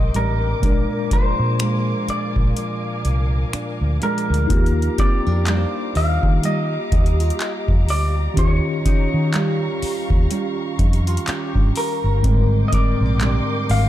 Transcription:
0.00 0.57 G#2 medium
0.00 0.63 G#2 medium
0.00 0.60 D3 medium
0.00 0.13 G3 medium
0.00 0.58 G#3 medium
0.00 0.14 C4 medium
0.00 0.59 C4 medium
0.00 4.46 A#4 medium
0.00 0.16 D#5 loud
0.00 0.59 G5 medium
0.00 0.59 C6 medium
0.00 4.46 D6 medium
0.14 0.52 A1 medium
0.14 0.74 G3 medium
0.14 0.74 C4 medium
0.14 1.12 D4 medium
0.14 1.08 A#4 medium
0.14 closed hi-hat medium
0.60 0.85 A#1 loud
0.60 4.45 A#2 medium
0.60 4.50 A#2 medium
0.60 4.46 G#3 medium
0.60 4.46 F5 medium
0.60 4.46 G#5 medium
0.60 kick loud
0.60 closed hi-hat medium
0.64 4.47 D4 medium
0.64 4.48 A#4 medium
1.11 2.56 F3 medium
1.11 1.59 G#3 medium
1.11 3.53 D4 medium
1.11 2.10 C5 loud
1.11 muted fingered electric bass stroke soft
1.11 kick medium
1.11 closed hi-hat medium
1.39 1.93 A#2 medium
1.59 4.01 G#3 medium
1.59 finger snap loud
1.59 closed hi-hat medium
2.08 3.99 D5 medium
2.08 muted fingered electric bass stroke soft
2.08 closed hi-hat medium
2.36 2.52 A#1 medium
2.36 kick medium
2.57 4.01 F3 medium
2.57 closed hi-hat medium
3.05 3.42 C2 medium
3.05 closed hi-hat medium
3.53 4.02 D4 medium
3.53 finger snap medium
3.53 muted fingered electric bass stroke soft
3.53 closed hi-hat medium
3.81 3.97 D2 medium
4.02 5.46 F3 medium
4.02 4.62 G#3 medium
4.02 5.01 D4 medium
4.02 4.99 A#4 medium
4.02 closed hi-hat medium
4.18 closed hi-hat medium
4.30 4.46 D2 medium
4.30 closed hi-hat medium
4.47 4.88 D#2 loud
4.47 8.33 A#3 medium
4.47 8.32 D#4 medium
4.47 12.20 G4 medium
4.47 8.33 F5 medium
4.47 12.20 A#5 medium
4.47 8.33 D6 medium
4.47 kick loud
4.47 closed hi-hat medium
4.51 8.34 F4 medium
4.51 8.35 G4 medium
4.66 closed hi-hat soft
4.82 closed hi-hat soft
4.98 5.26 C4 medium
4.98 7.10 G4 medium
4.98 5.97 D5 loud
4.98 kick loud
4.98 closed hi-hat medium
5.26 5.64 F2 medium
5.26 5.46 D4 medium
5.32 7.34 A#4 medium
5.46 6.43 G3 medium
5.46 6.44 D4 medium
5.46 6.44 F4 medium
5.46 clap loud
5.46 closed hi-hat medium
5.57 7.63 C5 medium
5.95 6.17 D#2 medium
5.95 6.45 F5 loud
5.95 open hi-hat soft
6.23 6.76 D#3 loud
6.23 kick medium
6.43 8.88 G3 medium
6.43 6.92 F4 medium
6.43 7.90 D#5 loud
6.43 closed hi-hat medium
6.92 7.30 D#2 loud
6.92 7.20 D#4 medium
6.92 kick loud
6.92 closed hi-hat medium
7.06 closed hi-hat medium
7.20 8.48 F4 medium
7.20 closed hi-hat medium
7.30 closed hi-hat medium
7.40 clap loud
7.40 closed hi-hat medium
7.68 7.89 F2 medium
7.68 kick medium
7.89 8.26 D2 medium
7.89 8.38 D5 medium
7.89 open hi-hat medium
8.34 8.59 D#2 loud
8.34 12.19 D#3 medium
8.34 12.24 D#3 medium
8.34 12.20 C#4 medium
8.34 12.20 F5 medium
8.34 12.20 C#6 medium
8.34 kick loud
8.34 closed hi-hat medium
8.38 12.21 F4 medium
8.38 12.22 G4 medium
8.38 10.55 C#5 loud
8.85 9.33 C#4 medium
8.85 10.97 D#4 medium
8.85 muted fingered electric bass stroke soft
8.85 kick medium
8.85 closed hi-hat medium
9.14 9.67 D#3 medium
9.34 10.30 G3 medium
9.34 10.30 C#4 medium
9.34 10.31 F4 medium
9.34 clap loud
9.34 closed hi-hat medium
9.82 muted fingered electric bass stroke soft
9.82 open hi-hat medium
10.10 10.26 D#2 medium
10.10 kick loud
10.31 13.21 G3 medium
10.31 11.26 C#4 medium
10.31 10.79 F4 medium
10.31 closed hi-hat medium
10.55 11.87 C5 loud
10.79 11.17 F2 loud
10.79 11.07 D#4 medium
10.79 kick medium
10.79 closed hi-hat medium
10.93 closed hi-hat medium
11.07 12.35 F4 medium
11.07 closed hi-hat medium
11.17 closed hi-hat medium
11.27 12.35 C#4 medium
11.27 12.68 G4 medium
11.27 muted fingered electric bass stroke soft
11.27 clap loud
11.27 closed hi-hat medium
11.55 11.71 G2 loud
11.55 kick medium
11.76 12.70 A#4 medium
11.76 open hi-hat medium
12.04 12.20 G1 medium
12.21 12.62 G#1 loud
12.21 13.89 G#2 medium
12.21 13.89 G3 medium
12.21 13.89 C4 medium
12.21 13.89 A#4 medium
12.21 13.89 G5 medium
12.21 13.89 C6 medium
12.21 13.89 D6 medium
12.21 kick loud
12.21 closed hi-hat medium
12.26 13.89 D3 medium
12.26 13.89 A#4 medium
12.68 12.73 D#5 medium
12.72 13.20 C4 medium
12.72 13.89 A#4 medium
12.72 13.71 D5 loud
12.72 kick loud
12.72 closed hi-hat medium
13.01 13.38 A#1 medium
13.06 13.89 D6 medium
13.21 13.89 G3 medium
13.21 13.89 C4 medium
13.21 13.89 D4 medium
13.21 clap loud
13.21 closed hi-hat medium
13.70 13.89 G#1 medium
13.70 13.89 F5 loud
13.70 open hi-hat medium

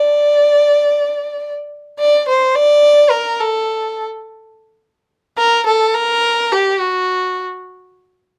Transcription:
0.00 1.53 D5 medium
1.99 2.26 D5 medium
2.28 2.57 C5 medium
2.55 3.12 D5 medium
3.10 3.41 A#4 medium
3.40 4.04 A4 medium
5.38 5.65 A#4 medium
5.66 5.96 A4 medium
5.95 6.53 A#4 loud
6.52 6.82 G4 medium
6.80 7.43 F#4 medium

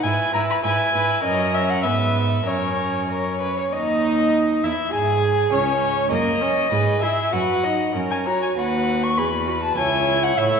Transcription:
0.03 0.12 G#2 medium
0.03 0.34 E4 soft
0.03 0.33 B4 soft
0.03 0.33 G#5 medium
0.33 0.42 G#2 soft
0.33 0.64 E4 soft
0.33 0.63 B4 soft
0.33 0.40 A#5 medium
0.50 0.56 B5 medium
0.64 0.72 G#2 medium
0.64 0.94 E4 soft
0.64 0.93 B4 soft
0.64 1.23 G#5 medium
0.93 1.02 G#2 soft
0.93 1.23 E4 soft
0.93 1.23 B4 medium
1.23 1.86 F#2 medium
1.23 1.86 C#4 medium
1.23 1.85 A#4 medium
1.23 1.56 D#5 medium
1.54 1.71 E5 medium
1.70 1.84 F#5 medium
1.83 2.46 G#2 medium
1.83 2.46 B3 soft
1.83 2.45 B4 soft
1.83 2.49 E5 medium
2.46 3.50 F#2 soft
2.46 3.50 C#4 soft
2.46 3.02 A#4 soft
2.46 3.10 C#5 medium
3.09 3.39 A#4 soft
3.09 3.74 C#5 medium
3.41 3.57 B4 soft
3.58 3.64 C#5 soft
3.73 4.59 D#2 soft
3.73 4.60 D#4 medium
3.73 4.66 D#4 medium
3.73 4.65 D#5 medium
4.63 4.72 E2 soft
4.63 4.72 E4 soft
4.63 4.92 E4 soft
4.63 4.93 E5 medium
4.93 5.51 G#2 medium
4.93 5.54 G#4 medium
4.93 5.53 G#4 medium
4.93 5.51 G#5 medium
5.52 6.10 C#2 soft
5.52 6.11 C#4 medium
5.52 6.11 C#4 soft
5.52 6.10 C#5 medium
6.11 6.62 F#2 medium
6.11 6.43 A#3 soft
6.11 6.43 A#4 soft
6.11 7.00 D#5 medium
6.41 6.71 C#4 soft
6.41 6.70 C#5 soft
6.71 7.23 G#2 medium
6.71 7.04 G#4 soft
6.71 7.03 B4 soft
7.02 7.32 E4 soft
7.02 7.33 G#4 soft
7.02 7.34 E5 medium
7.33 7.85 F#2 medium
7.33 7.66 F#4 soft
7.33 7.65 B4 soft
7.33 7.95 F#5 medium
7.63 7.95 D#4 soft
7.63 7.94 D#5 soft
7.95 8.47 F#2 medium
7.95 8.28 C#4 soft
7.95 8.28 A#4 soft
8.11 8.17 G#5 medium
8.26 8.57 F#4 soft
8.26 8.57 C#5 soft
8.26 8.41 A#5 medium
8.42 8.49 G#5 soft
8.57 9.20 D#2 soft
8.57 9.14 F#4 soft
8.57 9.14 B4 soft
8.57 9.05 F#5 medium
9.03 9.19 C#6 medium
9.18 9.77 E2 medium
9.18 9.26 G#4 soft
9.18 9.80 B4 soft
9.18 9.63 B5 medium
9.47 9.55 F#4 soft
9.63 9.77 A5 medium
9.78 10.37 C#2 medium
9.78 10.37 E4 medium
9.78 10.38 C#5 soft
9.78 10.25 G#5 medium
10.23 10.39 F#5 medium
10.37 10.60 A2 medium
10.37 10.60 E4 medium
10.37 10.60 C#5 soft
10.37 10.60 E5 medium

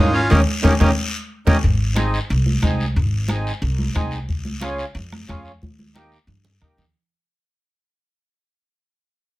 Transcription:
0.00 0.24 G#1 medium
0.00 0.12 G#3 medium
0.00 0.21 C#4 medium
0.00 0.14 D#4 medium
0.00 0.21 F4 medium
0.00 0.21 A#4 medium
0.13 0.28 C#4 medium
0.13 0.31 F4 loud
0.13 short guiro medium
0.29 0.43 D#2 loud
0.29 0.41 A#3 medium
0.29 0.40 C#4 medium
0.29 0.42 C#4 medium
0.29 0.41 D#4 loud
0.29 0.41 G4 medium
0.29 bombo low loud
0.29 high conga medium
0.29 high timbale medium
0.29 long guiro loud
0.63 0.76 D#2 medium
0.63 0.74 A#3 medium
0.63 0.74 C#4 medium
0.63 0.74 D#4 medium
0.63 0.74 G4 medium
0.63 bombo low medium
0.63 high conga loud
0.63 high timbale medium
0.63 long guiro loud
0.80 0.93 D#2 medium
0.80 0.91 A#3 medium
0.80 0.91 C#4 loud
0.80 0.91 C#4 medium
0.80 0.91 D#4 medium
0.80 0.91 G4 medium
0.80 bombo low loud
0.80 high conga loud
0.80 high timbale medium
0.80 long guiro loud
1.47 1.59 D#2 medium
1.47 1.57 A#3 medium
1.47 1.57 C#4 medium
1.47 1.58 C#4 medium
1.47 1.57 D#4 medium
1.47 1.57 G4 medium
1.47 bombo low loud
1.47 high conga loud
1.47 high timbale medium
1.47 long guiro medium
1.63 2.16 G#1 medium
1.63 bombo low medium
1.63 high conga soft
1.63 long guiro medium
1.95 2.19 C4 medium
1.95 2.19 D#4 medium
1.95 2.19 G#4 loud
1.95 bombo rim medium
1.95 high conga loud
1.95 short guiro medium
2.14 short guiro medium
2.30 2.56 C2 loud
2.30 high conga soft
2.30 long guiro medium
2.46 high conga medium
2.62 2.98 C2 medium
2.62 2.86 C4 medium
2.62 2.86 D#4 medium
2.62 2.86 G#4 medium
2.62 bombo low medium
2.62 bombo rim medium
2.62 high conga medium
2.62 short guiro medium
2.80 short guiro medium
2.96 3.49 G#1 medium
2.96 bombo low medium
2.96 high conga soft
2.96 long guiro medium
3.28 3.52 C4 medium
3.28 3.52 D#4 medium
3.28 3.52 G#4 medium
3.28 bombo rim medium
3.28 high conga medium
3.28 short guiro medium
3.47 short guiro medium
3.62 3.88 C2 loud
3.62 high conga soft
3.62 long guiro medium
3.79 high conga medium
3.95 4.29 C2 medium
3.95 4.18 C4 medium
3.95 4.18 D#4 medium
3.95 4.19 G#4 medium
3.95 bombo low medium
3.95 bombo rim medium
3.95 high conga medium
3.95 short guiro medium
4.11 short guiro medium
4.29 4.82 C#2 medium
4.29 bombo low medium
4.29 high conga soft
4.29 long guiro medium
4.45 high conga medium
4.61 4.85 C#4 medium
4.61 4.85 F4 medium
4.61 4.85 G#4 medium
4.61 bombo rim medium
4.61 high conga medium
4.61 short guiro medium
4.78 short guiro medium
4.95 5.21 F2 medium
4.95 high conga soft
4.95 long guiro medium
5.12 bombo rim medium
5.12 high conga medium
5.28 5.63 F2 medium
5.28 5.52 C#4 medium
5.28 5.52 F4 medium
5.28 5.52 G#4 medium
5.28 bombo low medium
5.28 bombo rim medium
5.28 high conga medium
5.28 short guiro medium
5.45 short guiro medium
5.62 6.15 D#2 medium
5.62 bombo low medium
5.62 high conga medium
5.62 long guiro medium
5.79 high conga medium
5.95 6.18 A#3 medium
5.95 6.18 D#4 medium
5.95 6.18 G4 loud
5.95 bombo rim medium
5.95 high conga medium
5.95 short guiro medium
6.12 short guiro medium
6.27 6.54 G2 medium
6.27 low conga medium
6.27 long guiro medium
6.45 low conga medium
6.61 6.76 C#2 medium
6.61 6.84 A#3 medium
6.61 6.85 D#4 medium
6.61 6.85 G4 medium
6.61 bombo low medium
6.61 bombo rim medium
6.61 low conga medium
6.61 short guiro medium
6.77 6.92 D#2 medium
6.77 low conga medium
6.77 short guiro medium

